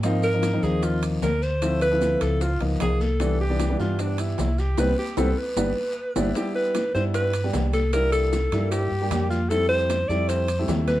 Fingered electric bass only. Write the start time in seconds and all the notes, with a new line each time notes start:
Already playing: G#2
0.63 D#2
1.22 D2
2.21 C#2
2.61 C#2
2.81 C2
3.79 G2
4.38 C2
4.78 C2
5.17 C2
5.56 G1
6.16 G1
6.95 G2
7.54 C2
8.52 G2
8.91 G2
9.11 F2
10.09 F2
10.68 D#2